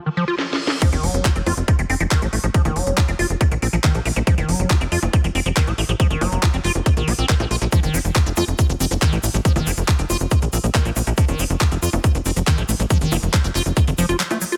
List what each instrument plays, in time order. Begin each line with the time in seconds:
Already playing: reverse cymbal
0.06 acid bass D#3
0.17 acid bass F3
0.28 acid bass F4
0.39 snare
0.53 snare
0.67 snare
0.82 acid bass F3, kick, closed hi-hat, crash, high bongo, sub drop
0.93 analog synth bass F1, acid bass D#3, closed hi-hat
1.03 analog synth bass F1, acid bass F#3, open hi-hat
1.14 analog synth bass F1, closed hi-hat
1.25 acid bass F#4, kick, clap, closed hi-hat
1.36 analog synth bass F1, acid bass C4, closed hi-hat
1.46 analog synth bass F2, acid bass F4, open hi-hat, high bongo
1.57 analog synth bass F1, closed hi-hat
1.68 acid bass F3, kick, closed hi-hat
1.79 analog synth bass F1, acid bass D#3, closed hi-hat
1.90 analog synth bass F1, acid bass C4, open hi-hat
2.00 analog synth bass F1, acid bass F3, closed hi-hat, high bongo
2.11 acid bass D#3, kick, clap, closed hi-hat
2.22 analog synth bass A1, acid bass F#3, closed hi-hat
2.33 analog synth bass A1, acid bass A3, open hi-hat
2.44 analog synth bass A1, acid bass F3, closed hi-hat
2.54 acid bass F3, kick, closed hi-hat
2.65 analog synth bass F1, acid bass D#3, closed hi-hat, high bongo
2.76 analog synth bass F1, acid bass F#3, open hi-hat
2.87 analog synth bass F1, closed hi-hat
2.98 acid bass F#4, kick, clap, closed hi-hat
3.08 analog synth bass F1, acid bass C4, closed hi-hat
3.19 analog synth bass F1, acid bass F4, open hi-hat, high bongo
3.30 analog synth bass F1, closed hi-hat
3.41 acid bass F3, kick, closed hi-hat
3.51 analog synth bass A#1, acid bass D#3, closed hi-hat
3.62 analog synth bass A#1, acid bass C4, open hi-hat
3.73 analog synth bass A#1, acid bass F3, closed hi-hat
3.84 acid bass D#3, kick, clap, closed hi-hat, high bongo
3.95 analog synth bass A#1, acid bass F#3, closed hi-hat
4.05 analog synth bass A#1, acid bass A3, open hi-hat
4.16 analog synth bass A#1, acid bass F3, closed hi-hat
4.27 acid bass F3, kick, closed hi-hat
4.38 analog synth bass F1, acid bass D#3, closed hi-hat, high bongo
4.49 analog synth bass F1, acid bass F#3, open hi-hat
4.59 analog synth bass F1, closed hi-hat
4.70 acid bass F#4, kick, clap, closed hi-hat
4.81 analog synth bass F1, acid bass C4, closed hi-hat
4.92 analog synth bass F2, acid bass F4, open hi-hat
5.03 analog synth bass F1, closed hi-hat, high bongo
5.13 acid bass F3, kick, closed hi-hat
5.24 analog synth bass F1, acid bass D#3, closed hi-hat
5.35 analog synth bass F1, acid bass C4, open hi-hat
5.46 analog synth bass F1, acid bass F3, closed hi-hat
5.57 acid bass D#3, kick, clap, closed hi-hat, high bongo
5.67 analog synth bass A1, acid bass F#3, closed hi-hat
5.78 analog synth bass A1, acid bass A3, open hi-hat
5.89 analog synth bass A1, acid bass F3, closed hi-hat
6.00 acid bass F3, kick, closed hi-hat
6.10 analog synth bass F1, acid bass D#3, closed hi-hat
6.21 analog synth bass F1, acid bass F#3, open hi-hat, high bongo
6.32 analog synth bass F1, closed hi-hat
6.43 acid bass F#4, kick, clap, closed hi-hat
6.54 analog synth bass F1, acid bass C4, closed hi-hat
6.64 analog synth bass F1, acid bass F4, clap, open hi-hat
6.75 analog synth bass F1, closed hi-hat, high bongo
6.86 acid bass F3, kick, closed hi-hat
6.97 analog synth bass A#1, acid bass D#3, closed hi-hat
7.08 analog synth bass A#1, acid bass C4, open hi-hat
7.18 analog synth bass A#1, acid bass C4, closed hi-hat
7.29 acid bass D#3, kick, clap, closed hi-hat
7.40 analog synth bass A#1, acid bass F3, closed hi-hat, high bongo
7.51 analog synth bass A#1, acid bass F4, open hi-hat
7.62 analog synth bass A#1, acid bass F3, closed hi-hat
7.72 acid bass F3, kick, closed hi-hat, high bongo, shaker
7.83 analog synth bass F1, acid bass D#3, closed hi-hat, shaker
7.94 analog synth bass F1, acid bass F#3, open hi-hat, shaker
8.05 analog synth bass F1, closed hi-hat, shaker
8.15 acid bass F3, kick, clap, closed hi-hat, shaker
8.26 analog synth bass F1, acid bass C4, closed hi-hat, shaker
8.37 analog synth bass F2, acid bass F4, open hi-hat, high bongo, shaker
8.48 analog synth bass F1, closed hi-hat, shaker
8.59 acid bass F3, kick, closed hi-hat, shaker
8.69 analog synth bass F1, acid bass D#3, closed hi-hat, shaker
8.80 analog synth bass F1, acid bass C4, open hi-hat, shaker
8.91 analog synth bass F1, acid bass F3, closed hi-hat, high bongo, shaker
9.02 acid bass D#3, kick, clap, closed hi-hat, shaker
9.12 analog synth bass A1, acid bass F#3, closed hi-hat, shaker
9.23 analog synth bass A1, acid bass A3, open hi-hat, shaker
9.34 analog synth bass A1, acid bass F3, closed hi-hat, shaker
9.45 acid bass F3, kick, closed hi-hat, shaker
9.56 analog synth bass F1, acid bass D#3, closed hi-hat, high bongo, shaker
9.67 analog synth bass F1, acid bass F#3, open hi-hat, shaker
9.77 analog synth bass F1, closed hi-hat, shaker
9.88 acid bass F3, kick, clap, closed hi-hat, shaker
9.98 analog synth bass F1, acid bass C4, closed hi-hat, shaker
10.10 analog synth bass F1, acid bass F4, open hi-hat, high bongo, shaker
10.20 analog synth bass F1, closed hi-hat, shaker
10.31 acid bass F3, kick, closed hi-hat, shaker
10.42 analog synth bass A#1, acid bass D#3, closed hi-hat, shaker
10.53 analog synth bass A#1, acid bass C4, open hi-hat, shaker
10.64 analog synth bass A#1, acid bass F3, closed hi-hat, shaker
10.74 acid bass D#3, kick, clap, closed hi-hat, high bongo, shaker
10.85 analog synth bass A#1, acid bass F#3, closed hi-hat, shaker
10.96 analog synth bass A#1, acid bass A3, open hi-hat, shaker
11.07 analog synth bass A#1, acid bass F3, closed hi-hat, shaker
11.17 acid bass F3, kick, closed hi-hat, shaker
11.28 analog synth bass F1, acid bass D#3, closed hi-hat, high bongo, shaker
11.39 analog synth bass F1, acid bass F#3, open hi-hat, shaker
11.50 analog synth bass F1, closed hi-hat, shaker
11.60 acid bass F3, kick, clap, closed hi-hat, shaker
11.71 analog synth bass F1, acid bass C4, closed hi-hat, shaker
11.82 analog synth bass F2, acid bass F4, open hi-hat, shaker
11.92 analog synth bass F1, closed hi-hat, high bongo, shaker
12.04 acid bass F3, kick, closed hi-hat, shaker
12.15 analog synth bass F1, acid bass D#3, closed hi-hat, shaker
12.26 analog synth bass F1, acid bass C4, open hi-hat, shaker
12.36 analog synth bass F1, acid bass F3, closed hi-hat, shaker
12.47 acid bass D#3, kick, clap, closed hi-hat, high bongo, shaker
12.58 analog synth bass A1, acid bass F#3, closed hi-hat, shaker
12.69 analog synth bass A1, acid bass A3, open hi-hat, shaker
12.79 analog synth bass A1, acid bass F3, closed hi-hat, shaker
12.90 acid bass F3, kick, closed hi-hat, shaker
13.01 analog synth bass F1, acid bass D#3, closed hi-hat, shaker
13.12 analog synth bass F1, acid bass F#3, open hi-hat, high bongo, shaker
13.23 analog synth bass F1, closed hi-hat, shaker
13.33 acid bass F3, kick, clap, closed hi-hat, shaker
13.44 analog synth bass F1, acid bass C4, closed hi-hat, shaker
13.55 analog synth bass F1, acid bass F4, clap, open hi-hat, shaker
13.66 analog synth bass F1, closed hi-hat, high bongo, shaker
13.77 acid bass F3, kick, closed hi-hat, shaker
13.87 analog synth bass F1, acid bass D#3, closed hi-hat, shaker
13.98 analog synth bass F1, acid bass F3, open hi-hat, shaker
14.09 analog synth bass F1, acid bass F4, closed hi-hat, shaker
14.19 acid bass F#3, clap, closed hi-hat, shaker
14.31 acid bass A3, closed hi-hat, high bongo, shaker
14.41 acid bass F#3, open hi-hat, shaker
14.52 acid bass F4, closed hi-hat, shaker